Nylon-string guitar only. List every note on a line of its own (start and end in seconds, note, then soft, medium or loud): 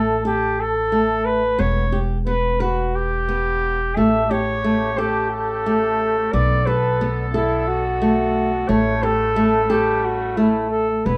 0.00 0.15 A3 medium
0.25 0.73 A4 medium
0.92 1.41 A3 medium
1.59 1.83 B3 medium
1.92 2.17 G4 medium
2.27 2.51 B3 medium
2.60 3.09 B4 medium
3.29 3.78 B3 medium
3.97 4.22 A3 medium
4.31 4.55 G4 medium
4.64 4.89 A3 medium
4.98 5.47 A4 medium
5.66 6.15 A3 medium
6.33 6.58 B3 medium
6.67 6.91 A4 medium
7.01 7.25 B3 medium
7.34 7.83 A4 medium
8.02 8.50 A3 medium
8.69 8.93 A3 medium
9.03 9.27 G4 medium
9.36 9.60 A3 medium
9.70 10.18 A4 medium
10.37 10.86 A3 medium
11.06 11.18 B3 medium